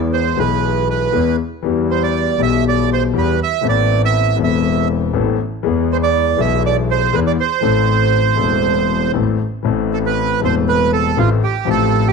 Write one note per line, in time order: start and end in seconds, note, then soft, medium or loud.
0.00 0.35 E2 medium
0.00 0.35 E3 medium
0.00 0.34 G#3 medium
0.00 0.35 B3 medium
0.00 0.36 G#4 medium
0.13 0.39 C5 medium
0.36 1.10 B1 medium
0.36 1.10 B2 medium
0.36 1.09 E3 medium
0.36 1.09 G#3 medium
0.36 1.10 B3 medium
0.36 1.11 G#4 medium
0.36 0.89 B4 medium
0.90 1.36 B4 medium
1.13 1.35 E2 medium
1.13 1.35 E3 medium
1.13 1.35 G#3 medium
1.13 1.35 B3 medium
1.13 1.35 G#4 medium
1.63 2.36 E2 medium
1.63 2.36 E3 medium
1.63 2.36 G3 medium
1.63 2.36 B3 medium
1.63 2.37 G4 medium
1.91 2.03 C5 medium
2.03 2.42 D5 medium
2.38 3.11 B1 medium
2.38 3.11 B2 medium
2.38 3.10 E3 medium
2.38 3.11 G3 medium
2.38 3.11 B3 medium
2.38 3.12 G4 medium
2.43 2.65 E5 medium
2.68 2.90 D5 medium
2.93 3.03 C5 medium
3.13 3.35 E2 medium
3.13 3.36 E2 medium
3.13 3.35 E3 medium
3.13 3.35 G3 medium
3.13 3.36 B3 medium
3.13 3.36 G4 medium
3.18 3.40 B4 medium
3.43 3.67 E5 medium
3.61 4.35 A1 medium
3.61 4.36 A1 medium
3.61 4.35 A2 medium
3.61 4.34 E3 medium
3.61 4.35 B3 medium
3.61 4.36 C4 medium
3.61 4.36 A4 medium
3.69 4.02 D5 medium
4.05 4.39 E5 medium
4.37 5.10 E1 medium
4.37 5.11 E1 medium
4.37 5.10 E2 medium
4.37 5.09 E3 medium
4.37 5.09 B3 medium
4.37 5.10 C4 medium
4.37 5.11 A4 medium
4.44 4.88 E5 medium
5.13 5.35 A1 medium
5.13 5.36 A1 medium
5.13 5.35 A2 medium
5.13 5.35 E3 medium
5.13 5.35 B3 medium
5.13 5.35 C4 medium
5.13 5.35 A4 medium
5.63 6.35 E2 medium
5.63 6.36 E2 medium
5.63 6.35 E3 medium
5.63 6.35 G#3 medium
5.63 6.36 B3 medium
5.63 6.36 G#4 medium
5.92 5.97 C5 medium
6.03 6.41 D5 medium
6.37 7.10 B1 medium
6.37 7.10 B2 medium
6.37 7.09 E3 medium
6.37 7.10 G#3 medium
6.37 7.10 B3 medium
6.41 7.11 G#4 medium
6.41 6.63 E5 medium
6.66 6.77 D5 medium
6.91 7.16 C5 medium
7.13 7.34 E2 medium
7.13 7.36 E2 medium
7.13 7.35 E3 medium
7.13 7.35 G#3 medium
7.13 7.35 B3 medium
7.13 7.35 G#4 medium
7.13 7.20 B4 medium
7.27 7.32 D5 medium
7.40 9.12 C5 medium
7.61 8.35 A1 medium
7.61 8.36 A1 medium
7.61 8.35 A2 medium
7.61 8.33 E3 medium
7.61 8.34 A3 medium
7.61 8.35 C4 medium
7.65 8.36 A4 medium
8.35 9.10 E1 medium
8.35 9.11 E1 medium
8.35 9.10 E2 medium
8.35 9.09 E3 medium
8.35 9.10 A3 medium
8.35 9.10 C4 medium
8.35 9.11 A4 medium
9.13 9.36 A1 medium
9.13 9.36 A2 medium
9.13 9.36 E3 medium
9.13 9.36 A3 medium
9.13 9.36 C4 medium
9.13 9.36 A4 medium
9.63 10.38 A1 medium
9.63 10.37 A2 medium
9.63 10.37 E3 medium
9.63 10.37 A3 medium
9.63 10.38 C4 medium
9.67 10.39 A4 medium
9.93 9.99 A4 medium
10.06 10.41 B4 medium
10.40 11.14 E1 medium
10.40 11.14 E2 medium
10.40 11.13 E3 medium
10.40 11.14 A3 medium
10.40 11.14 C4 medium
10.40 11.15 A4 medium
10.45 10.55 C5 medium
10.68 10.91 B4 medium
10.93 11.19 A4 medium
11.17 11.39 A1 medium
11.17 11.39 A2 medium
11.17 11.39 E3 medium
11.17 11.39 A3 medium
11.17 11.39 C4 medium
11.17 11.30 F4 medium
11.17 11.39 A4 medium
11.44 11.69 G4 medium
11.65 12.13 A1 medium
11.65 12.13 A2 medium
11.65 12.13 F3 medium
11.65 12.13 A3 medium
11.65 12.13 C4 medium
11.69 12.13 G4 medium
11.69 12.08 A4 medium
12.08 12.13 G4 medium